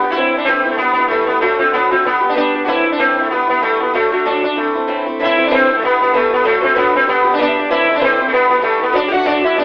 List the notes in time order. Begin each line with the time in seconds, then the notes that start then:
Already playing: B3
0.03 B3 D4 G4
0.10 E4 F#4
0.16 A2 E3 A3 C4 E4
0.34 A3 C4 D4 E4
0.45 A2 E3 C4
0.49 A3 E4
0.65 A3 C4 E4
0.71 A3
0.78 E3 G3 B3
0.82 E4
0.93 B3 E4
0.99 G3 B3
1.08 E3 G3 A3
1.12 B3 E4
1.26 B3 E4
1.31 G3
1.41 D2 A2 D3 A3 D4 F#4
1.59 D3 A3 C4 D4 F#4
1.73 D2 A2 D3 A3 B3 D4 F#4
1.91 D3 A3 C4 D4 F#4
2.05 G3 B3 D4 G4
2.21 B3 D4 G4
2.30 D4
2.35 G3 B3 D4 G4
2.54 B3 D4 G4
2.65 A2 E3 A3 C4 E4 F#4
2.85 A3 C4 E4
2.92 D4
2.98 A2 E3 A3 C4 E4
3.18 A3 C4 E4
3.23 A3
3.30 E3 G3 B3 E4
3.48 G3 B3 E4
3.61 E3 G3 A3 B3 E4
3.80 G3 B3 E4
3.94 D2 A2 D3 A3 D4 F#4
4.12 D3 A3 D4 F#4
4.26 D2 A2 D3 A3 D4 F#4
4.42 D3 A3 D4 F#4
4.56 E3 A3 C4 E4
4.75 A3 C4 E4
4.87 A2 E3 A3 C4 E4
5.06 A3 C4 E4
5.20 A2 E3 A3 C4 E4 E5
5.24 E4
5.37 A3 C4 E4
5.44 D4 D5
5.51 A2 E3 A3 C4 E4 C5
5.68 A3 C4 E4
5.76 A3 A4
5.82 E3 G3 B3 E4 B4
5.98 E4 B4
6.02 G3 B3
6.11 E3 G3 B3 E4 A4
6.16 A3
6.29 G3 B3 E4 B4
6.34 B3
6.42 D2 A2 D3 A3 D4 F#4 A4
6.47 A3
6.60 D3 A3 C4 D4 F#4 C5
6.74 D2 A2 D3 A3 B3 D4 F#4 B4
6.93 D3 A3 C4 D4 F#4
7.06 G3 B3 D4 G4 B4
7.24 B3 D4 G4
7.30 D4 D5
7.37 G3 B3 D4 G4 D5
7.41 D4
7.47 E5
7.57 B3 D4 G4 D5
7.69 A2 E3 A3 C4 E4 E5
7.89 A3 C4 E4
7.94 D4 D5
8.00 A2 E3 A3 C4 E4 C5
8.18 A3 C4 E4
8.28 E3 G3 A3 B4
8.33 B3 E4
8.49 G3 B3 E4 B4
8.60 E3 G3 A3 B3 E4 A4
8.79 G3 B3 E4 B4
8.92 D2 A2 D3 A3 D4 F#4 D5
9.08 A3 D4 F#4 G4 F#5
9.13 D3 F#4
9.25 D2 A2 D3 A3 D4 F#4 D5
9.41 D3 A3 D4 E4 F#4 E5
9.56 G3 B3 D4 G4 D5